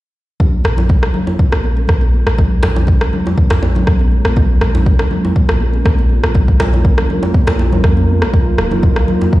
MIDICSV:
0, 0, Header, 1, 5, 480
1, 0, Start_track
1, 0, Key_signature, -5, "minor"
1, 0, Tempo, 495868
1, 389, Time_signature, 4, 2, 24, 8
1, 9099, End_track
2, 0, Start_track
2, 0, Title_t, "Analog synth pad"
2, 0, Program_c, 0, 89
2, 389, Note_on_c, 0, 61, 72
2, 390, Note_on_c, 0, 56, 79
2, 390, Note_on_c, 0, 58, 72
2, 391, Note_on_c, 0, 65, 71
2, 391, Note_on_c, 0, 70, 90
2, 8031, Note_off_c, 0, 56, 0
2, 8031, Note_off_c, 0, 61, 0
2, 8073, Note_on_c, 0, 54, 76
2, 8073, Note_on_c, 0, 63, 70
2, 9099, Note_off_c, 0, 54, 0
2, 9099, Note_off_c, 0, 58, 0
2, 9099, Note_off_c, 0, 63, 0
2, 9099, Note_off_c, 0, 65, 0
2, 9099, Note_off_c, 0, 70, 0
2, 9099, End_track
3, 0, Start_track
3, 0, Title_t, "808-style bass"
3, 0, Program_c, 1, 38
3, 625, Note_on_c, 1, 34, 94
3, 992, Note_on_c, 1, 32, 74
3, 1007, Note_off_c, 1, 34, 0
3, 1088, Note_off_c, 1, 32, 0
3, 1474, Note_on_c, 1, 34, 84
3, 1797, Note_off_c, 1, 34, 0
3, 1828, Note_on_c, 1, 34, 105
3, 2161, Note_off_c, 1, 34, 0
3, 2192, Note_on_c, 1, 34, 92
3, 2516, Note_off_c, 1, 34, 0
3, 2546, Note_on_c, 1, 34, 100
3, 2914, Note_on_c, 1, 32, 77
3, 2929, Note_off_c, 1, 34, 0
3, 3009, Note_off_c, 1, 32, 0
3, 3394, Note_on_c, 1, 34, 81
3, 3717, Note_off_c, 1, 34, 0
3, 3748, Note_on_c, 1, 34, 99
3, 4081, Note_off_c, 1, 34, 0
3, 4114, Note_on_c, 1, 34, 92
3, 4437, Note_off_c, 1, 34, 0
3, 4464, Note_on_c, 1, 34, 102
3, 4832, Note_on_c, 1, 32, 78
3, 4847, Note_off_c, 1, 34, 0
3, 4928, Note_off_c, 1, 32, 0
3, 5311, Note_on_c, 1, 34, 86
3, 5636, Note_off_c, 1, 34, 0
3, 5667, Note_on_c, 1, 34, 106
3, 6000, Note_off_c, 1, 34, 0
3, 6035, Note_on_c, 1, 34, 95
3, 6358, Note_off_c, 1, 34, 0
3, 6387, Note_on_c, 1, 34, 93
3, 6753, Note_on_c, 1, 32, 80
3, 6768, Note_off_c, 1, 34, 0
3, 6848, Note_off_c, 1, 32, 0
3, 7235, Note_on_c, 1, 34, 85
3, 7587, Note_on_c, 1, 41, 101
3, 7602, Note_off_c, 1, 34, 0
3, 7954, Note_on_c, 1, 34, 99
3, 7968, Note_off_c, 1, 41, 0
3, 8049, Note_off_c, 1, 34, 0
3, 8307, Note_on_c, 1, 27, 96
3, 8674, Note_on_c, 1, 37, 81
3, 8688, Note_off_c, 1, 27, 0
3, 8769, Note_off_c, 1, 37, 0
3, 9099, End_track
4, 0, Start_track
4, 0, Title_t, "Djembe"
4, 755, Note_on_c, 9, 63, 70
4, 851, Note_off_c, 9, 63, 0
4, 1231, Note_on_c, 9, 63, 68
4, 1328, Note_off_c, 9, 63, 0
4, 2543, Note_on_c, 9, 62, 78
4, 2639, Note_off_c, 9, 62, 0
4, 2674, Note_on_c, 9, 63, 76
4, 2771, Note_off_c, 9, 63, 0
4, 3163, Note_on_c, 9, 63, 78
4, 3259, Note_off_c, 9, 63, 0
4, 3390, Note_on_c, 9, 62, 76
4, 3391, Note_on_c, 9, 63, 94
4, 3487, Note_off_c, 9, 62, 0
4, 3488, Note_off_c, 9, 63, 0
4, 3509, Note_on_c, 9, 63, 98
4, 3606, Note_off_c, 9, 63, 0
4, 3640, Note_on_c, 9, 63, 61
4, 3736, Note_off_c, 9, 63, 0
4, 4597, Note_on_c, 9, 63, 84
4, 4693, Note_off_c, 9, 63, 0
4, 5079, Note_on_c, 9, 63, 82
4, 5176, Note_off_c, 9, 63, 0
4, 6389, Note_on_c, 9, 62, 81
4, 6485, Note_off_c, 9, 62, 0
4, 6521, Note_on_c, 9, 63, 74
4, 6618, Note_off_c, 9, 63, 0
4, 6996, Note_on_c, 9, 63, 80
4, 7092, Note_off_c, 9, 63, 0
4, 7232, Note_on_c, 9, 63, 91
4, 7238, Note_on_c, 9, 62, 81
4, 7328, Note_off_c, 9, 63, 0
4, 7335, Note_off_c, 9, 62, 0
4, 7349, Note_on_c, 9, 63, 86
4, 7446, Note_off_c, 9, 63, 0
4, 7478, Note_on_c, 9, 63, 66
4, 7574, Note_off_c, 9, 63, 0
4, 8437, Note_on_c, 9, 63, 67
4, 8534, Note_off_c, 9, 63, 0
4, 8919, Note_on_c, 9, 63, 78
4, 9016, Note_off_c, 9, 63, 0
4, 9099, End_track
5, 0, Start_track
5, 0, Title_t, "Drums"
5, 386, Note_on_c, 9, 62, 57
5, 387, Note_on_c, 9, 36, 118
5, 389, Note_on_c, 9, 63, 90
5, 397, Note_on_c, 9, 64, 81
5, 483, Note_off_c, 9, 62, 0
5, 484, Note_off_c, 9, 36, 0
5, 486, Note_off_c, 9, 63, 0
5, 493, Note_off_c, 9, 64, 0
5, 620, Note_on_c, 9, 62, 40
5, 628, Note_on_c, 9, 37, 86
5, 717, Note_off_c, 9, 62, 0
5, 725, Note_off_c, 9, 37, 0
5, 748, Note_on_c, 9, 64, 73
5, 845, Note_off_c, 9, 64, 0
5, 864, Note_on_c, 9, 62, 51
5, 868, Note_on_c, 9, 36, 114
5, 961, Note_off_c, 9, 62, 0
5, 965, Note_off_c, 9, 36, 0
5, 995, Note_on_c, 9, 37, 75
5, 1092, Note_off_c, 9, 37, 0
5, 1104, Note_on_c, 9, 64, 105
5, 1201, Note_off_c, 9, 64, 0
5, 1233, Note_on_c, 9, 62, 40
5, 1330, Note_off_c, 9, 62, 0
5, 1348, Note_on_c, 9, 36, 107
5, 1445, Note_off_c, 9, 36, 0
5, 1471, Note_on_c, 9, 62, 50
5, 1476, Note_on_c, 9, 37, 85
5, 1568, Note_off_c, 9, 62, 0
5, 1572, Note_off_c, 9, 37, 0
5, 1583, Note_on_c, 9, 63, 60
5, 1680, Note_off_c, 9, 63, 0
5, 1711, Note_on_c, 9, 62, 36
5, 1808, Note_off_c, 9, 62, 0
5, 1817, Note_on_c, 9, 63, 52
5, 1828, Note_on_c, 9, 36, 111
5, 1828, Note_on_c, 9, 37, 73
5, 1914, Note_off_c, 9, 63, 0
5, 1925, Note_off_c, 9, 36, 0
5, 1925, Note_off_c, 9, 37, 0
5, 1948, Note_on_c, 9, 62, 50
5, 2045, Note_off_c, 9, 62, 0
5, 2072, Note_on_c, 9, 63, 57
5, 2169, Note_off_c, 9, 63, 0
5, 2194, Note_on_c, 9, 37, 88
5, 2291, Note_off_c, 9, 37, 0
5, 2306, Note_on_c, 9, 63, 98
5, 2308, Note_on_c, 9, 36, 123
5, 2309, Note_on_c, 9, 62, 52
5, 2310, Note_on_c, 9, 64, 90
5, 2403, Note_off_c, 9, 63, 0
5, 2405, Note_off_c, 9, 36, 0
5, 2405, Note_off_c, 9, 62, 0
5, 2407, Note_off_c, 9, 64, 0
5, 2544, Note_on_c, 9, 62, 37
5, 2547, Note_on_c, 9, 37, 87
5, 2641, Note_off_c, 9, 62, 0
5, 2644, Note_off_c, 9, 37, 0
5, 2683, Note_on_c, 9, 64, 83
5, 2778, Note_on_c, 9, 62, 54
5, 2780, Note_off_c, 9, 64, 0
5, 2788, Note_on_c, 9, 36, 114
5, 2875, Note_off_c, 9, 62, 0
5, 2885, Note_off_c, 9, 36, 0
5, 2915, Note_on_c, 9, 37, 81
5, 3012, Note_off_c, 9, 37, 0
5, 3031, Note_on_c, 9, 64, 101
5, 3128, Note_off_c, 9, 64, 0
5, 3153, Note_on_c, 9, 62, 38
5, 3250, Note_off_c, 9, 62, 0
5, 3266, Note_on_c, 9, 63, 63
5, 3268, Note_on_c, 9, 36, 115
5, 3363, Note_off_c, 9, 63, 0
5, 3365, Note_off_c, 9, 36, 0
5, 3394, Note_on_c, 9, 37, 93
5, 3396, Note_on_c, 9, 62, 47
5, 3491, Note_off_c, 9, 37, 0
5, 3492, Note_off_c, 9, 62, 0
5, 3512, Note_on_c, 9, 63, 65
5, 3608, Note_off_c, 9, 63, 0
5, 3633, Note_on_c, 9, 62, 37
5, 3643, Note_on_c, 9, 64, 105
5, 3730, Note_off_c, 9, 62, 0
5, 3739, Note_off_c, 9, 64, 0
5, 3747, Note_on_c, 9, 37, 75
5, 3748, Note_on_c, 9, 36, 116
5, 3844, Note_off_c, 9, 37, 0
5, 3845, Note_off_c, 9, 36, 0
5, 3864, Note_on_c, 9, 62, 50
5, 3878, Note_on_c, 9, 63, 64
5, 3961, Note_off_c, 9, 62, 0
5, 3975, Note_off_c, 9, 63, 0
5, 3985, Note_on_c, 9, 63, 54
5, 4082, Note_off_c, 9, 63, 0
5, 4114, Note_on_c, 9, 37, 91
5, 4118, Note_on_c, 9, 63, 65
5, 4210, Note_off_c, 9, 37, 0
5, 4215, Note_off_c, 9, 63, 0
5, 4224, Note_on_c, 9, 62, 52
5, 4227, Note_on_c, 9, 36, 126
5, 4227, Note_on_c, 9, 63, 91
5, 4229, Note_on_c, 9, 64, 93
5, 4321, Note_off_c, 9, 62, 0
5, 4324, Note_off_c, 9, 36, 0
5, 4324, Note_off_c, 9, 63, 0
5, 4325, Note_off_c, 9, 64, 0
5, 4466, Note_on_c, 9, 37, 94
5, 4469, Note_on_c, 9, 62, 35
5, 4563, Note_off_c, 9, 37, 0
5, 4566, Note_off_c, 9, 62, 0
5, 4598, Note_on_c, 9, 64, 77
5, 4695, Note_off_c, 9, 64, 0
5, 4705, Note_on_c, 9, 62, 50
5, 4707, Note_on_c, 9, 36, 123
5, 4802, Note_off_c, 9, 62, 0
5, 4804, Note_off_c, 9, 36, 0
5, 4833, Note_on_c, 9, 37, 79
5, 4930, Note_off_c, 9, 37, 0
5, 4946, Note_on_c, 9, 64, 106
5, 5043, Note_off_c, 9, 64, 0
5, 5082, Note_on_c, 9, 62, 34
5, 5178, Note_off_c, 9, 62, 0
5, 5187, Note_on_c, 9, 36, 110
5, 5284, Note_off_c, 9, 36, 0
5, 5312, Note_on_c, 9, 62, 45
5, 5314, Note_on_c, 9, 37, 92
5, 5408, Note_off_c, 9, 62, 0
5, 5411, Note_off_c, 9, 37, 0
5, 5424, Note_on_c, 9, 63, 63
5, 5521, Note_off_c, 9, 63, 0
5, 5552, Note_on_c, 9, 62, 39
5, 5649, Note_off_c, 9, 62, 0
5, 5663, Note_on_c, 9, 63, 62
5, 5667, Note_on_c, 9, 36, 123
5, 5668, Note_on_c, 9, 37, 81
5, 5759, Note_off_c, 9, 63, 0
5, 5764, Note_off_c, 9, 36, 0
5, 5765, Note_off_c, 9, 37, 0
5, 5794, Note_on_c, 9, 62, 51
5, 5891, Note_off_c, 9, 62, 0
5, 5900, Note_on_c, 9, 63, 62
5, 5997, Note_off_c, 9, 63, 0
5, 6036, Note_on_c, 9, 37, 92
5, 6133, Note_off_c, 9, 37, 0
5, 6142, Note_on_c, 9, 63, 90
5, 6144, Note_on_c, 9, 62, 43
5, 6148, Note_on_c, 9, 36, 118
5, 6149, Note_on_c, 9, 64, 88
5, 6239, Note_off_c, 9, 63, 0
5, 6241, Note_off_c, 9, 62, 0
5, 6244, Note_off_c, 9, 36, 0
5, 6245, Note_off_c, 9, 64, 0
5, 6274, Note_on_c, 9, 36, 81
5, 6371, Note_off_c, 9, 36, 0
5, 6387, Note_on_c, 9, 37, 91
5, 6391, Note_on_c, 9, 62, 37
5, 6484, Note_off_c, 9, 37, 0
5, 6488, Note_off_c, 9, 62, 0
5, 6516, Note_on_c, 9, 64, 83
5, 6612, Note_off_c, 9, 64, 0
5, 6628, Note_on_c, 9, 36, 116
5, 6628, Note_on_c, 9, 62, 42
5, 6725, Note_off_c, 9, 36, 0
5, 6725, Note_off_c, 9, 62, 0
5, 6755, Note_on_c, 9, 37, 83
5, 6852, Note_off_c, 9, 37, 0
5, 6873, Note_on_c, 9, 64, 91
5, 6970, Note_off_c, 9, 64, 0
5, 7001, Note_on_c, 9, 62, 32
5, 7097, Note_off_c, 9, 62, 0
5, 7104, Note_on_c, 9, 63, 64
5, 7108, Note_on_c, 9, 36, 115
5, 7201, Note_off_c, 9, 63, 0
5, 7205, Note_off_c, 9, 36, 0
5, 7229, Note_on_c, 9, 62, 47
5, 7235, Note_on_c, 9, 37, 94
5, 7326, Note_off_c, 9, 62, 0
5, 7332, Note_off_c, 9, 37, 0
5, 7352, Note_on_c, 9, 63, 62
5, 7449, Note_off_c, 9, 63, 0
5, 7478, Note_on_c, 9, 64, 107
5, 7481, Note_on_c, 9, 62, 38
5, 7574, Note_off_c, 9, 64, 0
5, 7578, Note_off_c, 9, 62, 0
5, 7588, Note_on_c, 9, 36, 119
5, 7588, Note_on_c, 9, 37, 74
5, 7685, Note_off_c, 9, 36, 0
5, 7685, Note_off_c, 9, 37, 0
5, 7716, Note_on_c, 9, 62, 48
5, 7719, Note_on_c, 9, 63, 59
5, 7812, Note_off_c, 9, 62, 0
5, 7816, Note_off_c, 9, 63, 0
5, 7834, Note_on_c, 9, 63, 55
5, 7931, Note_off_c, 9, 63, 0
5, 7956, Note_on_c, 9, 37, 87
5, 7958, Note_on_c, 9, 63, 69
5, 8052, Note_off_c, 9, 37, 0
5, 8055, Note_off_c, 9, 63, 0
5, 8068, Note_on_c, 9, 36, 119
5, 8069, Note_on_c, 9, 62, 53
5, 8069, Note_on_c, 9, 63, 93
5, 8076, Note_on_c, 9, 64, 78
5, 8165, Note_off_c, 9, 36, 0
5, 8165, Note_off_c, 9, 62, 0
5, 8166, Note_off_c, 9, 63, 0
5, 8173, Note_off_c, 9, 64, 0
5, 8308, Note_on_c, 9, 37, 86
5, 8311, Note_on_c, 9, 62, 37
5, 8405, Note_off_c, 9, 37, 0
5, 8408, Note_off_c, 9, 62, 0
5, 8431, Note_on_c, 9, 64, 78
5, 8528, Note_off_c, 9, 64, 0
5, 8544, Note_on_c, 9, 62, 46
5, 8549, Note_on_c, 9, 36, 112
5, 8641, Note_off_c, 9, 62, 0
5, 8646, Note_off_c, 9, 36, 0
5, 8676, Note_on_c, 9, 37, 74
5, 8773, Note_off_c, 9, 37, 0
5, 8791, Note_on_c, 9, 64, 98
5, 8888, Note_off_c, 9, 64, 0
5, 8917, Note_on_c, 9, 62, 34
5, 9013, Note_off_c, 9, 62, 0
5, 9029, Note_on_c, 9, 36, 109
5, 9099, Note_off_c, 9, 36, 0
5, 9099, End_track
0, 0, End_of_file